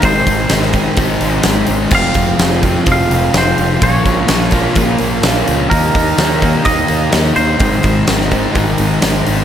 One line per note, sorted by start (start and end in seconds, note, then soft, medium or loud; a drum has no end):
0.00 0.22 G#1 loud
0.00 0.74 G#2 loud
0.00 0.48 D#3 loud
0.00 0.50 G#3 loud
0.00 0.50 C4 loud
0.00 0.50 D#4 loud
0.00 1.90 D#5 medium
0.00 1.91 G#5 medium
0.00 5.67 C6 medium
0.00 kick loud
0.00 open hi-hat medium
0.04 1.91 A#4 medium
0.04 1.42 C5 medium
0.26 0.45 G#1 medium
0.26 0.51 D#3 medium
0.26 0.53 G#3 medium
0.26 kick medium
0.26 open hi-hat medium
0.49 0.87 G#1 medium
0.49 0.95 G#2 medium
0.49 0.94 D#3 medium
0.49 0.74 G#3 medium
0.49 0.72 C4 loud
0.49 0.70 D#4 medium
0.49 snare loud
0.49 open hi-hat medium
0.62 snare soft
0.72 0.94 G#3 medium
0.72 0.96 C4 medium
0.72 0.96 D#4 medium
0.72 kick medium
0.72 open hi-hat medium
0.76 0.97 D#3 medium
0.95 1.16 G#1 medium
0.95 1.44 G#2 loud
0.95 1.40 D#3 loud
0.95 1.20 G#3 loud
0.95 1.20 C4 loud
0.95 1.18 D#4 loud
0.95 kick loud
0.95 open hi-hat medium
1.19 1.40 G#1 loud
1.19 1.41 G#3 medium
1.19 1.43 C4 medium
1.19 1.43 D#4 medium
1.19 open hi-hat medium
1.42 1.64 G#1 medium
1.42 1.90 G#2 medium
1.42 1.89 D#3 medium
1.42 1.89 G#3 medium
1.42 1.90 C4 medium
1.42 1.91 D#4 loud
1.42 snare loud
1.42 open hi-hat loud
1.66 1.87 G#1 medium
1.66 1.92 D#3 medium
1.66 1.90 G#3 medium
1.66 open hi-hat medium
1.89 2.10 F1 loud
1.89 2.37 F2 loud
1.89 2.15 C3 medium
1.89 2.37 F3 loud
1.89 2.37 G#3 medium
1.89 2.38 C4 loud
1.89 2.39 F4 loud
1.89 3.80 G#4 medium
1.89 5.67 F5 medium
1.89 kick loud
1.89 crash loud
1.94 2.13 F3 loud
1.94 2.91 F5 loud
1.94 3.81 G5 medium
2.13 2.34 F1 medium
2.13 2.39 C3 medium
2.13 2.41 F3 medium
2.13 kick medium
2.13 open hi-hat medium
2.37 2.76 F1 loud
2.37 2.85 F2 medium
2.37 2.65 C3 medium
2.37 2.84 F3 medium
2.37 2.62 G#3 medium
2.37 2.62 C4 medium
2.37 2.60 F4 medium
2.37 snare loud
2.37 open hi-hat medium
2.42 2.62 F3 medium
2.51 snare soft
2.61 2.88 F3 medium
2.61 2.85 G#3 medium
2.61 2.85 C4 medium
2.61 2.86 F4 medium
2.61 kick medium
2.61 open hi-hat medium
2.66 2.86 C3 medium
2.85 3.05 F1 medium
2.85 3.32 F2 loud
2.85 3.34 C3 loud
2.85 3.32 F3 loud
2.85 3.09 G#3 loud
2.85 3.08 C4 loud
2.85 3.09 F4 loud
2.85 kick loud
2.85 open hi-hat medium
2.89 3.36 F3 loud
2.89 3.37 F5 loud
3.09 3.29 F1 loud
3.09 3.33 G#3 medium
3.09 3.33 C4 medium
3.09 3.34 F4 medium
3.09 open hi-hat medium
3.33 3.52 F1 medium
3.33 3.80 F2 medium
3.33 3.59 C3 medium
3.33 3.81 F3 medium
3.33 3.80 G#3 medium
3.33 3.81 C4 medium
3.33 3.82 F4 medium
3.33 snare loud
3.33 open hi-hat medium
3.38 3.83 C5 medium
3.56 3.77 F1 medium
3.56 3.79 C3 medium
3.56 3.81 F3 medium
3.56 open hi-hat medium
3.80 4.01 A#1 loud
3.80 4.52 A#2 medium
3.80 4.28 F3 medium
3.80 4.28 A#3 medium
3.80 4.28 C#4 loud
3.80 4.30 F4 loud
3.80 5.69 A#4 medium
3.80 5.69 C#5 medium
3.80 5.21 C#5 medium
3.80 kick loud
3.80 open hi-hat medium
4.04 4.24 A#1 medium
4.04 4.28 F3 medium
4.04 4.29 A#3 medium
4.04 kick medium
4.04 open hi-hat medium
4.26 4.66 A#1 medium
4.26 4.71 A#2 medium
4.26 4.75 F3 medium
4.26 4.53 A#3 medium
4.26 4.52 C#4 medium
4.26 4.51 F4 medium
4.26 snare loud
4.26 open hi-hat medium
4.41 snare soft
4.51 4.73 F3 medium
4.51 4.75 A#3 medium
4.51 4.75 C#4 medium
4.51 4.76 F4 medium
4.51 kick medium
4.51 open hi-hat medium
4.75 4.95 A#1 loud
4.75 5.23 A#2 loud
4.75 5.22 F3 loud
4.75 5.01 A#3 loud
4.75 4.99 C#4 loud
4.75 4.98 F4 loud
4.75 kick loud
4.75 open hi-hat medium
4.98 5.19 A#1 medium
4.98 5.23 A#3 medium
4.98 5.23 C#4 medium
4.98 5.24 F4 medium
4.98 open hi-hat medium
5.21 5.42 A#1 medium
5.21 5.69 A#2 medium
5.21 5.69 F3 medium
5.21 5.71 A#3 medium
5.21 5.70 C#4 medium
5.21 5.71 F4 medium
5.21 snare loud
5.21 open hi-hat medium
5.46 5.66 C#2 medium
5.46 5.71 F3 medium
5.46 5.72 A#3 medium
5.46 open hi-hat medium
5.69 5.90 D#2 loud
5.69 6.16 D#3 loud
5.69 6.17 G3 loud
5.69 6.18 A#3 medium
5.69 6.19 D#4 loud
5.69 7.58 G4 medium
5.69 6.68 A#4 medium
5.69 9.44 D#5 medium
5.69 7.58 F5 medium
5.69 7.58 A#5 medium
5.69 kick loud
5.69 open hi-hat loud
5.93 6.13 D#2 loud
5.93 6.19 A#3 medium
5.93 6.20 D#4 medium
5.93 kick medium
5.93 open hi-hat medium
6.18 6.55 D#2 loud
6.18 6.63 D#3 medium
6.18 6.42 G3 medium
6.18 6.42 A#3 medium
6.18 6.41 D#4 loud
6.18 snare loud
6.18 open hi-hat medium
6.41 6.64 G3 medium
6.41 6.64 A#3 medium
6.41 6.65 D#4 medium
6.41 kick medium
6.41 open hi-hat medium
6.64 6.84 D#2 loud
6.64 7.10 D#3 medium
6.64 6.88 G3 loud
6.64 6.88 A#3 loud
6.64 6.87 D#4 loud
6.64 7.09 D#5 loud
6.64 kick loud
6.64 open hi-hat medium
6.88 7.08 D#2 loud
6.88 7.10 G3 medium
6.88 7.11 A#3 medium
6.88 7.12 D#4 medium
6.88 open hi-hat medium
7.11 7.31 D#2 loud
7.11 7.58 D#3 medium
7.11 7.58 G3 medium
7.11 7.59 A#3 medium
7.11 7.59 D#4 medium
7.11 snare loud
7.11 open hi-hat medium
7.34 7.55 D#2 medium
7.34 7.59 A#3 medium
7.34 7.58 D#4 medium
7.34 8.98 C5 loud
7.34 open hi-hat medium
7.58 7.78 G#1 loud
7.58 8.30 G#2 medium
7.58 8.06 D#3 loud
7.58 8.07 G#3 loud
7.58 8.08 C4 loud
7.58 8.08 D#4 loud
7.58 9.44 A#4 medium
7.58 9.44 G#5 medium
7.58 9.44 C6 medium
7.58 kick loud
7.58 open hi-hat medium
7.81 8.02 G#1 medium
7.81 8.05 D#3 medium
7.81 8.08 G#3 medium
7.81 kick medium
7.81 open hi-hat medium
8.05 8.51 G#2 medium
8.05 8.52 D#3 medium
8.05 8.32 G#3 medium
8.05 8.31 C4 medium
8.05 snare loud
8.05 open hi-hat medium
8.09 8.45 G#1 medium
8.09 8.29 D#4 medium
8.20 snare soft
8.30 8.53 D#3 medium
8.30 8.53 G#3 medium
8.30 8.54 C4 medium
8.30 8.53 D#4 medium
8.30 kick medium
8.30 open hi-hat medium
8.52 8.74 G#1 medium
8.52 9.01 G#2 loud
8.52 9.00 D#3 loud
8.52 8.78 G#3 loud
8.52 8.78 C4 loud
8.52 8.76 D#4 loud
8.52 kick loud
8.52 open hi-hat medium
8.77 8.97 G#1 loud
8.77 9.00 G#3 medium
8.77 9.02 C4 medium
8.77 9.02 D#4 medium
8.77 open hi-hat medium
9.01 9.21 G#1 medium
9.01 9.44 G#2 medium
9.01 9.44 D#3 medium
9.01 9.44 G#3 medium
9.01 9.44 C4 medium
9.01 9.44 D#4 medium
9.01 snare loud
9.01 open hi-hat medium
9.25 9.44 G#1 medium
9.25 9.44 D#3 medium
9.25 9.44 G#3 medium
9.25 open hi-hat medium